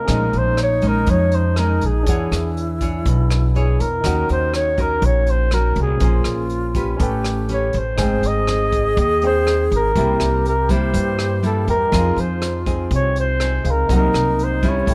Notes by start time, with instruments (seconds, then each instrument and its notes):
Already playing: grand piano D#4 A4 D#5 F5 F#5 A5, flugelhorn A#4
0.04 upright bass A#1, grand piano C#4 G#4, alto flute D#4, cross-stick, closed hi-hat
0.08 nylon-string guitar A#2 G#3 C#4 D#4, grand piano C5 D#5, kick
0.33 upright bass A#1, closed hi-hat
0.37 flugelhorn C5
0.57 cross-stick, closed hi-hat
0.63 flugelhorn C#5
0.82 nylon-string guitar G#3 C#4 D#4, kick, closed hi-hat
0.87 flugelhorn A#4
1.06 upright bass F2, nylon-string guitar F3, flugelhorn C#5, kick, closed hi-hat
1.32 flugelhorn C5, closed hi-hat
1.56 nylon-string guitar G#3 C#4 D#4, flugelhorn A#4, cross-stick, closed hi-hat
1.81 upright bass A#1, closed hi-hat
1.86 flugelhorn G#4
2.03 upright bass E2, grand piano D4 G#4 C#5, alto flute E4, kick, closed hi-hat
2.08 nylon-string guitar E3 D4 G#4 C#5, grand piano F#5
2.32 upright bass E2, cross-stick, closed hi-hat
2.57 closed hi-hat
2.81 nylon-string guitar D4 G#4 C#5, kick, closed hi-hat
3.05 upright bass B1, nylon-string guitar B2, kick, closed hi-hat
3.31 cross-stick, closed hi-hat
3.55 nylon-string guitar D4 G#4 C#5, flugelhorn G#4, closed hi-hat
3.80 upright bass E2, flugelhorn A#4, closed hi-hat
4.00 upright bass D#2, grand piano D#4 A#4 C#5, alto flute D#4, kick, cross-stick, closed hi-hat
4.04 nylon-string guitar D#3 C#4 F#4 A#4, grand piano F#5
4.29 upright bass D#2, flugelhorn C5, closed hi-hat
4.54 flugelhorn C#5, cross-stick, closed hi-hat
4.77 nylon-string guitar C#4 F#4 A#4, flugelhorn A#4, kick, closed hi-hat
5.02 upright bass A#1, nylon-string guitar A#2, flugelhorn C#5, kick, closed hi-hat
5.27 flugelhorn C5, closed hi-hat
5.51 nylon-string guitar C#4 F#4 A#4, flugelhorn A#4, cross-stick, closed hi-hat
5.76 upright bass C2, closed hi-hat
5.82 flugelhorn G#4
5.97 upright bass A#1, grand piano C#4 A#4, nylon-string guitar C#4, alto flute F4, kick, closed hi-hat
6.01 nylon-string guitar A#3 G#4 C5, grand piano C5 G#5
6.24 upright bass A#1, cross-stick, closed hi-hat
6.49 closed hi-hat
6.75 nylon-string guitar C#4 G4 B4, kick, closed hi-hat
6.97 upright bass A1, nylon-string guitar A3, grand piano C#4 A4, alto flute G4, kick, closed hi-hat
7.01 grand piano B4 G5
7.24 cross-stick, closed hi-hat
7.49 nylon-string guitar C#4 G4 B4, closed hi-hat
7.53 flugelhorn C#5
7.73 upright bass A1, closed hi-hat
7.78 flugelhorn C5
7.96 upright bass G#1, nylon-string guitar G#2 C4 D#4, grand piano D#4 C5 G#5, alto flute G#4, kick, cross-stick, closed hi-hat
8.01 grand piano G5
8.23 upright bass G#1, flugelhorn D#5, closed hi-hat
8.47 nylon-string guitar C4 D#4, cross-stick, closed hi-hat
8.72 kick, closed hi-hat
8.97 upright bass D#2, nylon-string guitar D#3, flugelhorn D#5, kick, closed hi-hat
9.21 nylon-string guitar C4 D#4, grand piano D#4 G#4 C5 G5, closed hi-hat
9.26 flugelhorn C5
9.47 cross-stick, closed hi-hat
9.71 upright bass G#1, closed hi-hat
9.76 flugelhorn A#4
9.94 upright bass C2, nylon-string guitar C3 G3 A#3 E4, grand piano E4 A#4 C5, alto flute G4, kick, closed hi-hat
9.99 grand piano G5
10.20 upright bass C2, cross-stick, closed hi-hat
10.45 flugelhorn A#4, closed hi-hat
10.69 nylon-string guitar G3 A#3 E4, flugelhorn C5, kick, closed hi-hat
10.93 nylon-string guitar G2, upright bass G2, kick, closed hi-hat
11.19 cross-stick, closed hi-hat
11.43 nylon-string guitar G3 A#3 E4, flugelhorn A4, closed hi-hat
11.66 upright bass E2, grand piano E4 A#4 C5 G5, flugelhorn A#4, closed hi-hat
11.89 upright bass F2, nylon-string guitar F3 C4, grand piano D#4 G#4, kick
11.93 nylon-string guitar D#4 G#4, alto flute F4, grand piano C5 F5, cross-stick, closed hi-hat
12.16 upright bass F2, flugelhorn C5, closed hi-hat
12.42 cross-stick, closed hi-hat
12.66 nylon-string guitar C4 D#4 G#4, kick, closed hi-hat
12.91 upright bass C2, nylon-string guitar C3, kick, closed hi-hat
12.95 flugelhorn C#5
13.16 closed hi-hat
13.20 flugelhorn C5
13.40 nylon-string guitar C4 D#4 G#4, cross-stick, closed hi-hat
13.63 upright bass C#2, grand piano D#4 G#4 C5 F5, closed hi-hat
13.71 flugelhorn A#4
13.86 upright bass C2, nylon-string guitar C3 F#3 A#3, grand piano D#4 A#4, alto flute D#4, kick, closed hi-hat
13.90 nylon-string guitar D#4, grand piano C5 F#5
13.96 flugelhorn A#4
14.13 upright bass C2, cross-stick, closed hi-hat
14.39 closed hi-hat
14.44 flugelhorn C5
14.63 nylon-string guitar G3 C#4 E4, kick, closed hi-hat
14.68 flugelhorn C#5
14.80 alto flute C4
14.84 upright bass A1, nylon-string guitar A2, alto flute C#4, grand piano E4 A4 C#5, kick, closed hi-hat
14.90 grand piano G5